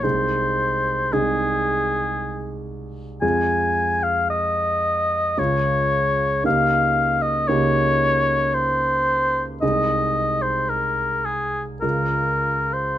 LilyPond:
<<
  \new Staff \with { instrumentName = "Oboe" } { \time 3/4 \key aes \major \tempo 4 = 56 c''4 aes'4. r8 | aes''8. f''16 ees''4 des''4 | f''8. ees''16 des''4 c''4 | ees''8. c''16 bes'8 aes'16 r16 bes'8. c''16 | }
  \new Staff \with { instrumentName = "Grand piano" } { \time 3/4 \key aes \major <c, aes ees' aes'>4 <c, aes ees' aes'>2 | <f, aes f' aes'>2 <des, aes f' aes'>4 | <des, bes ees' g'>4 <des, bes ees' g'>2 | <c, aes ees' aes'>2 <des, aes f' bes'>4 | }
>>